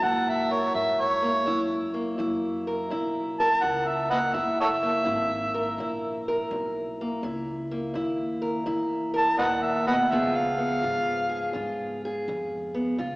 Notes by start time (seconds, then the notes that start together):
Already playing: F#3 A#3 A#4
0.02 F#2 A#2 E4 F#5
0.29 E5
0.51 A#4 C#5
0.74 F#2 G#2 E5
1.01 C#5
1.22 A#3
1.46 F#2 E4
1.94 A#3
2.18 F#2 E4
2.67 A#4
2.90 B1 F#2 E4
3.40 A#4 A5
3.63 C#2 F#2 F#5
3.88 E5
4.10 A#3 B4 D#5 F#5
4.34 F#1 F#2 E4 E5
4.61 A4 C#5 E5
4.83 A#3
5.05 G#1 F#2 E4
5.54 A#4
5.78 A#1 F#2 E4
6.28 A#4
6.51 B1 F#2
7.01 A#3
7.23 C#2 F#2 E4
7.71 A#3
7.94 D#2 F#2 E4
8.42 A#4
8.66 E2 F#2 E4
9.14 A#4 A5
9.37 D#2 A#2 B4 D#5 F#5
9.63 E5
9.86 B2 B4 D#5 F#5
10.10 C#2 C#3 F3 B3 F4 G#4 E5
10.36 F5
10.58 B3
10.82 G#2 C#3 F4
11.29 G#4
11.53 G#2 C#3 F4
12.05 G#4
12.28 F2 C#3
12.74 B3
12.98 C#2 C#3 F4